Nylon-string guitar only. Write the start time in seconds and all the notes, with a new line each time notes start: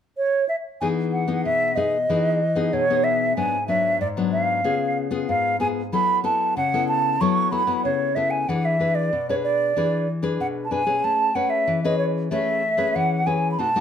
0.81 E3 B3 D#4 G#4
1.28 B3 D#4 G#4
1.45 B2
1.76 B3 D#4 G#4
2.10 E3 B3 D#4 G#4
2.55 B3 D#4 G#4
2.73 B2
2.90 B3 D#4 G#4
3.37 G#2 F#3 B3 D4
3.68 F#3 B3 D4
4.01 G#2
4.17 F#3 B3 D4
4.64 C#3 B3 F4 G#4
5.11 B3 F4 G#4
5.29 G#2
5.60 B3 F4 G#4
5.92 F#3 B3 E4 A4
6.24 B3 E4 A4
6.57 C#3
6.74 B3 E4 A4
7.21 F#3 B3 E4 A4
7.52 B3 E4 A4
7.67 B3 E4 A4
7.85 C#3
8.16 B3 E4 A4
8.49 E3 D4 G#4 B4
8.80 D4 G#4 B4
9.13 B2
9.29 D4 G#4 B4
9.77 E3 D4 G#4 B4
10.22 D4 G#4 B4
10.40 B2
10.71 D4 G#4 B4
10.86 C#4 G#4 B4
11.04 A3
11.35 C#4 G#4 B4
11.67 E3
11.84 C#4 G#4 B4
12.31 A3 C#4 G#4 B4
12.77 C#4 G#4 B4
12.96 E3
13.26 C#4 G#4 B4
13.59 B2 A3 D#4 F#4
13.76 A3 D#4 F#4